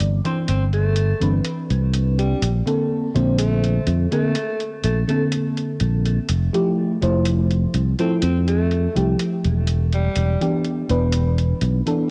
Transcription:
Already playing: fm electric piano E3 C4 D4 D5
0.00 fingered electric bass G1, closed hi-hat
0.25 fm electric piano E3 C4 D4 C5, alto saxophone C4, closed hi-hat
0.48 fingered electric bass G1, alto saxophone C4, closed hi-hat
0.73 alto saxophone A3, closed hi-hat
0.96 closed hi-hat
1.20 fingered electric bass G1, fm electric piano E3 C4 D4 B4, closed hi-hat
1.45 closed hi-hat
1.70 fingered electric bass C2, closed hi-hat
1.94 closed hi-hat
2.19 alto saxophone G3, closed hi-hat
2.42 fingered electric bass A#1, closed hi-hat
2.66 fm electric piano D3 A#3 C4 A4, closed hi-hat
3.15 fingered electric bass A#1, fm electric piano A#2 D3 C4 C5, closed hi-hat
3.38 alto saxophone A3, closed hi-hat
3.64 closed hi-hat
3.87 fingered electric bass F2, closed hi-hat
4.11 fm electric piano D3 A#3 C4 A#4, alto saxophone A3, closed hi-hat
4.35 closed hi-hat
4.60 closed hi-hat
4.84 fingered electric bass A#1, alto saxophone A3, closed hi-hat
5.07 fm electric piano D3 A#3 C4 A4, alto saxophone A3, closed hi-hat
5.32 closed hi-hat
5.57 closed hi-hat
5.80 fingered electric bass A#1, closed hi-hat
6.05 closed hi-hat
6.29 fingered electric bass F1, closed hi-hat
6.53 fm electric piano F3 A3 E4 G4, closed hi-hat
7.02 fingered electric bass F1, fm electric piano F3 A3 E4 C5, closed hi-hat
7.25 closed hi-hat
7.51 closed hi-hat
7.74 fingered electric bass C2, closed hi-hat
7.99 fm electric piano F3 A3 E4 A4, alto saxophone C4, closed hi-hat
8.22 fingered electric bass F2, alto saxophone C4, closed hi-hat
8.48 alto saxophone A3, closed hi-hat
8.71 closed hi-hat
8.95 fingered electric bass C2, fm electric piano F3 A3 E4 G4, closed hi-hat
9.19 closed hi-hat
9.44 fingered electric bass E1, closed hi-hat
9.67 closed hi-hat
9.93 alto saxophone G3, closed hi-hat
10.16 fingered electric bass E1, closed hi-hat
10.41 fm electric piano E3 B3 D4 G4, closed hi-hat
10.65 closed hi-hat
10.89 fingered electric bass E1, fm electric piano E3 B3 D4 B4, closed hi-hat
11.13 closed hi-hat
11.38 closed hi-hat
11.61 fingered electric bass B1, closed hi-hat
11.86 fm electric piano E3 B3 D4 A4, closed hi-hat

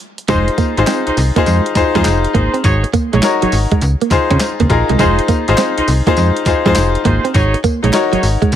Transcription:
0.18 closed hi-hat
0.28 fm bass F1, clean electric guitar G#3, horn section D#4 F4 G#4 C5, grand piano D#4 F4 G#4 C5, kick, closed hi-hat, tambourine
0.48 closed hi-hat
0.58 clean electric guitar A#3, kick, closed hi-hat, tambourine
0.77 fm bass G#1, horn section D#4 F4 G#4 C5, grand piano D#4 F4 G#4 C5, muted clean electric guitar stroke, closed hi-hat
0.87 clean electric guitar C4, snare, clap, closed hi-hat, tambourine
1.07 fm bass C2, horn section D#4 F4 G#4 C5, closed hi-hat
1.17 fm bass C2, muted clean electric guitar stroke, open hi-hat, tambourine
1.36 clean electric guitar A#3, grand piano D#4 F4 G#4 C5, kick, closed hi-hat
1.46 fm bass F2, clean electric guitar G#3, closed hi-hat, tambourine
1.66 closed hi-hat
1.75 fm bass F2, grand piano D#4 F4 G#4 C5, muted clean electric guitar stroke, kick, snare, clap, closed hi-hat, tambourine
1.95 fm bass F2, clean electric guitar G#3, horn section D#4 F4 G#4 C5, grand piano D#4 F4 G#4 C5, kick, closed hi-hat
2.05 fm bass F1, muted clean electric guitar stroke, snare, clap, closed hi-hat, tambourine
2.24 closed hi-hat
2.34 fm bass G#1, clean electric guitar A#3, horn section D#4 F4 G#4 C5, kick, closed hi-hat
2.54 clean electric guitar C4, closed hi-hat
2.63 fm bass G#1, horn section D#4 F#4 G#4 C#5, kick, closed hi-hat, tambourine
2.84 muted clean electric guitar stroke, closed hi-hat
2.93 clean electric guitar A#3, kick, closed hi-hat, tambourine
3.12 fm bass A#1, clean electric guitar G#3, horn section D#4 F#4 G#4 C#5, closed hi-hat
3.22 grand piano D#4 F#4 A#4 C#5, snare, clap, closed hi-hat, tambourine
3.42 fm bass G#1, clean electric guitar F#3, horn section D#4 F#4 G#4 C#5, closed hi-hat
3.52 fm bass G#1, muted clean electric guitar stroke, open hi-hat, tambourine
3.72 clean electric guitar G#3, kick, closed hi-hat
3.81 fm bass C#2, closed hi-hat, tambourine
4.01 clean electric guitar A#3, closed hi-hat
4.11 fm bass C#3, grand piano D#4 F4 G#4 C5, muted clean electric guitar stroke, kick, snare, clap, closed hi-hat, tambourine
4.30 fm bass C#3, clean electric guitar C4, horn section C#4 F4 G#4 C5, kick, closed hi-hat
4.40 snare, clap, closed hi-hat, tambourine
4.60 fm bass C#2, clean electric guitar A#3, kick, closed hi-hat
4.69 fm bass A#1, grand piano D#4 F4 G#4 A#4, kick, closed hi-hat
4.89 fm bass C2, clean electric guitar G#3, closed hi-hat
4.99 fm bass F1, clean electric guitar G#3, horn section D#4 F4 G#4 C5, grand piano D#4 F4 G#4 C5, kick, closed hi-hat, tambourine
5.19 closed hi-hat
5.28 clean electric guitar A#3, kick, closed hi-hat, tambourine
5.48 fm bass G#1, horn section D#4 F4 G#4 C5, grand piano D#4 F4 G#4 C5, muted clean electric guitar stroke, closed hi-hat
5.58 clean electric guitar C4, snare, clap, closed hi-hat, tambourine
5.77 fm bass C2, horn section D#4 F4 G#4 C5, closed hi-hat
5.88 fm bass C2, muted clean electric guitar stroke, open hi-hat, tambourine
6.07 clean electric guitar A#3, grand piano D#4 F4 G#4 C5, kick, closed hi-hat
6.17 fm bass F2, clean electric guitar G#3, closed hi-hat, tambourine
6.37 closed hi-hat
6.46 fm bass F2, grand piano D#4 F4 G#4 C5, muted clean electric guitar stroke, kick, snare, clap, closed hi-hat, tambourine
6.65 fm bass F2, clean electric guitar G#3, horn section D#4 F4 G#4 C5, grand piano D#4 F4 G#4 C5, kick, closed hi-hat
6.75 fm bass F1, snare, clap, closed hi-hat, tambourine
6.95 closed hi-hat
7.04 fm bass G#1, clean electric guitar A#3, horn section D#4 F4 G#4 C5, kick, closed hi-hat
7.24 clean electric guitar C4, closed hi-hat
7.34 fm bass G#1, horn section D#4 F#4 G#4 C#5, kick, closed hi-hat, tambourine
7.54 muted clean electric guitar stroke, closed hi-hat
7.64 clean electric guitar A#3, kick, closed hi-hat, tambourine
7.83 fm bass A#1, clean electric guitar G#3, horn section D#4 F#4 G#4 C#5, closed hi-hat
7.93 grand piano D#4 F#4 A#4 C#5, snare, clap, closed hi-hat, tambourine
8.13 fm bass G#1, clean electric guitar F#3, horn section D#4 F#4 G#4 C#5, closed hi-hat
8.22 fm bass G#1, muted clean electric guitar stroke, open hi-hat, tambourine
8.42 clean electric guitar G#3, kick, closed hi-hat
8.52 fm bass C#2, closed hi-hat, tambourine

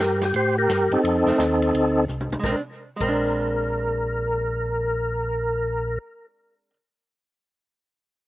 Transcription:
Already playing: tonewheel organ G4
0.00 tonewheel organ G2 A#4
0.21 tonewheel organ G4, snare, ride
0.34 tonewheel organ A2 G4 C5, ride
0.58 tonewheel organ G4 A#4
0.69 tonewheel organ G2, snare, hi-hat pedal, ride
0.91 tonewheel organ G2 C4 D#4 A4, ride
1.04 tonewheel organ F2, ride
1.26 tonewheel organ F2, hollow-body jazz guitar D#3 A3 C4, snare
1.39 tonewheel organ D#2, snare, hi-hat pedal, ride
1.62 ride
1.73 tonewheel organ D2, ride
2.08 tonewheel organ C2, hi-hat pedal, mid tom
2.21 mid tom
2.31 tonewheel organ C2, mid tom
2.39 tonewheel organ A#1, hollow-body jazz guitar G#3
2.44 hollow-body jazz guitar C4, tonewheel organ A#4, kick, snare
2.51 hollow-body jazz guitar D4
2.96 hollow-body jazz guitar G#3
3.00 tonewheel organ A#1 A#4, hollow-body jazz guitar C4, kick, crash
3.08 hollow-body jazz guitar D4

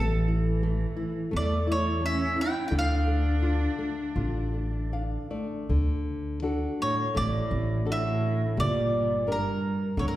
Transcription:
Already playing: upright bass A1, cello E3, nylon-string guitar A3, mandolin A4
0.28 nylon-string guitar E4
0.63 nylon-string guitar A3
0.97 nylon-string guitar E4
1.31 upright bass E2, nylon-string guitar A3, cello A3
1.37 mandolin D5
1.67 cello A3, nylon-string guitar E4
1.72 mandolin C#5
2.01 nylon-string guitar A3
2.05 cello C#4, mandolin E5
2.36 nylon-string guitar E4, cello E4
2.41 mandolin G5
2.67 upright bass D2, nylon-string guitar D3, cello E4, mandolin G5
2.75 cello D4, mandolin F5
3.08 nylon-string guitar A3
3.42 nylon-string guitar F4
3.79 nylon-string guitar A3
4.16 upright bass A1, nylon-string guitar F4
4.54 nylon-string guitar A3
4.93 nylon-string guitar D4 F5
5.31 nylon-string guitar A3 D5
5.69 upright bass D2, nylon-string guitar D3
6.42 nylon-string guitar D4 F#4 A4
6.82 cello A2, mandolin C#5
7.15 upright bass A1, cello A2, nylon-string guitar A3, mandolin D5
7.51 upright bass A1
7.86 cello A2, nylon-string guitar D4 F#4 A4
7.92 mandolin E5
8.57 upright bass G1, cello A#2, nylon-string guitar G3, mandolin D5
9.27 nylon-string guitar D4 G4 A#4
9.32 cello G2, mandolin A#4
9.97 upright bass D2, cello A2, nylon-string guitar D3, mandolin C#5
10.08 cello G2, mandolin A#4

